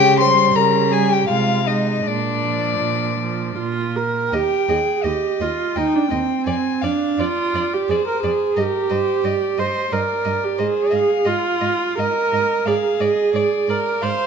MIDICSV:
0, 0, Header, 1, 5, 480
1, 0, Start_track
1, 0, Key_signature, -3, "major"
1, 0, Tempo, 710900
1, 868, Tempo, 762389
1, 1352, Time_signature, 3, 2, 24, 8
1, 2788, Tempo, 713436
1, 5188, Tempo, 670391
1, 7588, Tempo, 728155
1, 8068, Tempo, 681818
1, 9678, End_track
2, 0, Start_track
2, 0, Title_t, "Violin"
2, 0, Program_c, 0, 40
2, 0, Note_on_c, 0, 79, 107
2, 121, Note_off_c, 0, 79, 0
2, 136, Note_on_c, 0, 84, 99
2, 375, Note_on_c, 0, 82, 84
2, 386, Note_off_c, 0, 84, 0
2, 625, Note_on_c, 0, 80, 82
2, 635, Note_off_c, 0, 82, 0
2, 759, Note_on_c, 0, 79, 75
2, 769, Note_off_c, 0, 80, 0
2, 865, Note_off_c, 0, 79, 0
2, 869, Note_on_c, 0, 77, 84
2, 1115, Note_on_c, 0, 75, 70
2, 1124, Note_off_c, 0, 77, 0
2, 1360, Note_on_c, 0, 74, 77
2, 1369, Note_off_c, 0, 75, 0
2, 2309, Note_off_c, 0, 74, 0
2, 2785, Note_on_c, 0, 79, 60
2, 3258, Note_on_c, 0, 75, 55
2, 3268, Note_off_c, 0, 79, 0
2, 3747, Note_on_c, 0, 79, 53
2, 3757, Note_off_c, 0, 75, 0
2, 4220, Note_off_c, 0, 79, 0
2, 4224, Note_on_c, 0, 80, 61
2, 4456, Note_on_c, 0, 77, 54
2, 4466, Note_off_c, 0, 80, 0
2, 4706, Note_on_c, 0, 74, 51
2, 4716, Note_off_c, 0, 77, 0
2, 5177, Note_on_c, 0, 72, 48
2, 5187, Note_off_c, 0, 74, 0
2, 5664, Note_off_c, 0, 72, 0
2, 5668, Note_on_c, 0, 70, 48
2, 5908, Note_on_c, 0, 72, 50
2, 5919, Note_off_c, 0, 70, 0
2, 6146, Note_on_c, 0, 74, 49
2, 6157, Note_off_c, 0, 72, 0
2, 6395, Note_on_c, 0, 75, 50
2, 6406, Note_off_c, 0, 74, 0
2, 6634, Note_off_c, 0, 75, 0
2, 6638, Note_on_c, 0, 74, 49
2, 7107, Note_on_c, 0, 72, 53
2, 7118, Note_off_c, 0, 74, 0
2, 7354, Note_on_c, 0, 77, 57
2, 7365, Note_off_c, 0, 72, 0
2, 8072, Note_on_c, 0, 75, 53
2, 8083, Note_off_c, 0, 77, 0
2, 8544, Note_on_c, 0, 77, 55
2, 8555, Note_off_c, 0, 75, 0
2, 8787, Note_on_c, 0, 75, 54
2, 8797, Note_off_c, 0, 77, 0
2, 9026, Note_off_c, 0, 75, 0
2, 9030, Note_on_c, 0, 74, 52
2, 9499, Note_on_c, 0, 77, 56
2, 9510, Note_off_c, 0, 74, 0
2, 9678, Note_off_c, 0, 77, 0
2, 9678, End_track
3, 0, Start_track
3, 0, Title_t, "Violin"
3, 0, Program_c, 1, 40
3, 0, Note_on_c, 1, 67, 85
3, 142, Note_on_c, 1, 72, 84
3, 152, Note_off_c, 1, 67, 0
3, 375, Note_on_c, 1, 70, 72
3, 385, Note_off_c, 1, 72, 0
3, 616, Note_on_c, 1, 68, 70
3, 626, Note_off_c, 1, 70, 0
3, 743, Note_on_c, 1, 67, 66
3, 753, Note_off_c, 1, 68, 0
3, 867, Note_on_c, 1, 65, 75
3, 877, Note_off_c, 1, 67, 0
3, 1109, Note_on_c, 1, 63, 60
3, 1118, Note_off_c, 1, 65, 0
3, 1353, Note_off_c, 1, 63, 0
3, 1359, Note_on_c, 1, 62, 68
3, 2290, Note_off_c, 1, 62, 0
3, 2784, Note_on_c, 1, 75, 51
3, 2837, Note_off_c, 1, 75, 0
3, 3026, Note_on_c, 1, 75, 42
3, 3080, Note_off_c, 1, 75, 0
3, 3263, Note_on_c, 1, 75, 49
3, 3316, Note_off_c, 1, 75, 0
3, 3512, Note_on_c, 1, 75, 43
3, 3566, Note_off_c, 1, 75, 0
3, 3747, Note_on_c, 1, 75, 46
3, 3801, Note_off_c, 1, 75, 0
3, 3980, Note_on_c, 1, 75, 43
3, 4034, Note_off_c, 1, 75, 0
3, 4224, Note_on_c, 1, 74, 44
3, 4278, Note_off_c, 1, 74, 0
3, 4467, Note_on_c, 1, 74, 41
3, 4521, Note_off_c, 1, 74, 0
3, 4715, Note_on_c, 1, 74, 46
3, 4769, Note_off_c, 1, 74, 0
3, 4950, Note_on_c, 1, 74, 42
3, 5004, Note_off_c, 1, 74, 0
3, 5190, Note_on_c, 1, 74, 45
3, 5247, Note_off_c, 1, 74, 0
3, 5426, Note_on_c, 1, 74, 38
3, 5483, Note_off_c, 1, 74, 0
3, 5664, Note_on_c, 1, 75, 47
3, 5721, Note_off_c, 1, 75, 0
3, 5900, Note_on_c, 1, 75, 43
3, 5957, Note_off_c, 1, 75, 0
3, 6152, Note_on_c, 1, 75, 44
3, 6209, Note_off_c, 1, 75, 0
3, 6389, Note_on_c, 1, 75, 42
3, 6446, Note_off_c, 1, 75, 0
3, 6634, Note_on_c, 1, 75, 45
3, 6691, Note_off_c, 1, 75, 0
3, 6869, Note_on_c, 1, 75, 41
3, 6926, Note_off_c, 1, 75, 0
3, 7111, Note_on_c, 1, 75, 46
3, 7168, Note_off_c, 1, 75, 0
3, 7342, Note_on_c, 1, 75, 39
3, 7399, Note_off_c, 1, 75, 0
3, 7585, Note_on_c, 1, 75, 45
3, 7638, Note_off_c, 1, 75, 0
3, 7820, Note_on_c, 1, 75, 40
3, 7873, Note_off_c, 1, 75, 0
3, 8073, Note_on_c, 1, 75, 45
3, 8130, Note_off_c, 1, 75, 0
3, 8316, Note_on_c, 1, 75, 43
3, 8372, Note_off_c, 1, 75, 0
3, 8553, Note_on_c, 1, 74, 49
3, 8610, Note_off_c, 1, 74, 0
3, 8790, Note_on_c, 1, 74, 43
3, 8846, Note_off_c, 1, 74, 0
3, 9033, Note_on_c, 1, 74, 48
3, 9089, Note_off_c, 1, 74, 0
3, 9271, Note_on_c, 1, 74, 44
3, 9328, Note_off_c, 1, 74, 0
3, 9504, Note_on_c, 1, 74, 46
3, 9560, Note_off_c, 1, 74, 0
3, 9678, End_track
4, 0, Start_track
4, 0, Title_t, "Viola"
4, 0, Program_c, 2, 41
4, 143, Note_on_c, 2, 55, 58
4, 608, Note_off_c, 2, 55, 0
4, 621, Note_on_c, 2, 55, 56
4, 865, Note_off_c, 2, 55, 0
4, 870, Note_on_c, 2, 56, 53
4, 1106, Note_off_c, 2, 56, 0
4, 1117, Note_on_c, 2, 56, 47
4, 1352, Note_off_c, 2, 56, 0
4, 1600, Note_on_c, 2, 53, 46
4, 2060, Note_off_c, 2, 53, 0
4, 2068, Note_on_c, 2, 53, 47
4, 2302, Note_off_c, 2, 53, 0
4, 2312, Note_on_c, 2, 65, 64
4, 2551, Note_on_c, 2, 70, 62
4, 2561, Note_off_c, 2, 65, 0
4, 2791, Note_on_c, 2, 67, 74
4, 2801, Note_off_c, 2, 70, 0
4, 3026, Note_on_c, 2, 68, 64
4, 3036, Note_off_c, 2, 67, 0
4, 3267, Note_on_c, 2, 67, 64
4, 3277, Note_off_c, 2, 68, 0
4, 3514, Note_on_c, 2, 65, 61
4, 3524, Note_off_c, 2, 67, 0
4, 3753, Note_on_c, 2, 63, 69
4, 3763, Note_off_c, 2, 65, 0
4, 3878, Note_on_c, 2, 62, 60
4, 3888, Note_off_c, 2, 63, 0
4, 3987, Note_off_c, 2, 62, 0
4, 3991, Note_on_c, 2, 60, 58
4, 4473, Note_on_c, 2, 62, 57
4, 4483, Note_off_c, 2, 60, 0
4, 4711, Note_on_c, 2, 65, 69
4, 4721, Note_off_c, 2, 62, 0
4, 5074, Note_on_c, 2, 67, 61
4, 5084, Note_off_c, 2, 65, 0
4, 5184, Note_on_c, 2, 68, 68
4, 5194, Note_off_c, 2, 67, 0
4, 5308, Note_off_c, 2, 68, 0
4, 5314, Note_on_c, 2, 70, 59
4, 5423, Note_off_c, 2, 70, 0
4, 5428, Note_on_c, 2, 68, 61
4, 5676, Note_on_c, 2, 67, 74
4, 5687, Note_off_c, 2, 68, 0
4, 6395, Note_on_c, 2, 72, 66
4, 6406, Note_off_c, 2, 67, 0
4, 6638, Note_on_c, 2, 70, 57
4, 6649, Note_off_c, 2, 72, 0
4, 7007, Note_on_c, 2, 67, 59
4, 7018, Note_off_c, 2, 70, 0
4, 7115, Note_on_c, 2, 68, 71
4, 7126, Note_off_c, 2, 67, 0
4, 7592, Note_on_c, 2, 65, 71
4, 7602, Note_off_c, 2, 68, 0
4, 8069, Note_off_c, 2, 65, 0
4, 8074, Note_on_c, 2, 70, 75
4, 8554, Note_on_c, 2, 68, 65
4, 8565, Note_off_c, 2, 70, 0
4, 9275, Note_on_c, 2, 70, 64
4, 9286, Note_off_c, 2, 68, 0
4, 9505, Note_on_c, 2, 72, 71
4, 9516, Note_off_c, 2, 70, 0
4, 9678, Note_off_c, 2, 72, 0
4, 9678, End_track
5, 0, Start_track
5, 0, Title_t, "Cello"
5, 0, Program_c, 3, 42
5, 0, Note_on_c, 3, 49, 82
5, 318, Note_off_c, 3, 49, 0
5, 374, Note_on_c, 3, 49, 74
5, 808, Note_off_c, 3, 49, 0
5, 866, Note_on_c, 3, 48, 63
5, 1294, Note_off_c, 3, 48, 0
5, 1351, Note_on_c, 3, 46, 60
5, 1772, Note_off_c, 3, 46, 0
5, 1821, Note_on_c, 3, 46, 57
5, 2245, Note_off_c, 3, 46, 0
5, 2302, Note_on_c, 3, 46, 54
5, 2730, Note_off_c, 3, 46, 0
5, 2785, Note_on_c, 3, 39, 54
5, 2839, Note_off_c, 3, 39, 0
5, 3027, Note_on_c, 3, 39, 54
5, 3081, Note_off_c, 3, 39, 0
5, 3269, Note_on_c, 3, 39, 49
5, 3322, Note_off_c, 3, 39, 0
5, 3508, Note_on_c, 3, 39, 44
5, 3561, Note_off_c, 3, 39, 0
5, 3751, Note_on_c, 3, 39, 51
5, 3805, Note_off_c, 3, 39, 0
5, 3987, Note_on_c, 3, 39, 49
5, 4041, Note_off_c, 3, 39, 0
5, 4223, Note_on_c, 3, 41, 53
5, 4277, Note_off_c, 3, 41, 0
5, 4469, Note_on_c, 3, 41, 48
5, 4522, Note_off_c, 3, 41, 0
5, 4702, Note_on_c, 3, 41, 47
5, 4755, Note_off_c, 3, 41, 0
5, 4946, Note_on_c, 3, 41, 44
5, 5000, Note_off_c, 3, 41, 0
5, 5180, Note_on_c, 3, 41, 48
5, 5237, Note_off_c, 3, 41, 0
5, 5428, Note_on_c, 3, 41, 46
5, 5486, Note_off_c, 3, 41, 0
5, 5665, Note_on_c, 3, 43, 53
5, 5722, Note_off_c, 3, 43, 0
5, 5907, Note_on_c, 3, 43, 48
5, 5965, Note_off_c, 3, 43, 0
5, 6147, Note_on_c, 3, 43, 47
5, 6204, Note_off_c, 3, 43, 0
5, 6389, Note_on_c, 3, 43, 44
5, 6446, Note_off_c, 3, 43, 0
5, 6632, Note_on_c, 3, 43, 48
5, 6689, Note_off_c, 3, 43, 0
5, 6873, Note_on_c, 3, 43, 48
5, 6930, Note_off_c, 3, 43, 0
5, 7110, Note_on_c, 3, 44, 52
5, 7167, Note_off_c, 3, 44, 0
5, 7351, Note_on_c, 3, 44, 47
5, 7408, Note_off_c, 3, 44, 0
5, 7586, Note_on_c, 3, 44, 53
5, 7638, Note_off_c, 3, 44, 0
5, 7825, Note_on_c, 3, 44, 45
5, 7877, Note_off_c, 3, 44, 0
5, 8066, Note_on_c, 3, 44, 48
5, 8122, Note_off_c, 3, 44, 0
5, 8308, Note_on_c, 3, 44, 50
5, 8365, Note_off_c, 3, 44, 0
5, 8543, Note_on_c, 3, 44, 53
5, 8599, Note_off_c, 3, 44, 0
5, 8785, Note_on_c, 3, 44, 49
5, 8841, Note_off_c, 3, 44, 0
5, 9022, Note_on_c, 3, 44, 55
5, 9078, Note_off_c, 3, 44, 0
5, 9262, Note_on_c, 3, 44, 50
5, 9319, Note_off_c, 3, 44, 0
5, 9507, Note_on_c, 3, 44, 54
5, 9564, Note_off_c, 3, 44, 0
5, 9678, End_track
0, 0, End_of_file